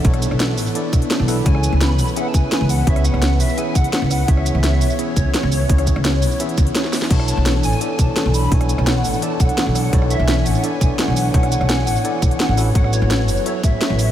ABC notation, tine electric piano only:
X:1
M:4/4
L:1/8
Q:1/4=170
K:Bdor
V:1 name="Tine electric piano"
[B,DEAc]4 [B,DEAd] z2 [B,DEAB] | [B,CEGc]4 [B,CEGe] z3 | [B,CEGc]4 [B,CEGe] z3 | [B,CEGc]4 [B,CEGe] z3 |
[B,CEGc]4 [B,CEGe] z3 | [B,DEAc]4 [B,DEAd] z3 | [B,DEAc]4 [B,DEAd] z3 | [B,DEAc]4 [B,DEAd] z3 |
[B,DEAc]4 [B,DEAd] z2 [B,EFAB] | [B,EFAc]4 [B,EFAe] z3 |]